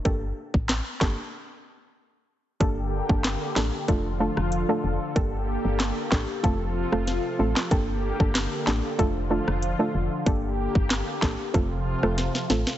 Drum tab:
HH |x---x-----------|x---x---x---x---|x---x---x---x---|x---x---x---x---|
CP |----x-x---------|----x-x---------|----x-x--------x|----x-x---------|
SD |----o-o---------|----o-o----r----|----o-o----ro--o|----o-o----r----|
BD |o--o--o---------|o--o----o-------|o-----o-o-------|o--o----o-------|

HH |x---x---x---x---|
CP |----x-x---------|
SD |----o-o----roooo|
BD |o--o--o-o-------|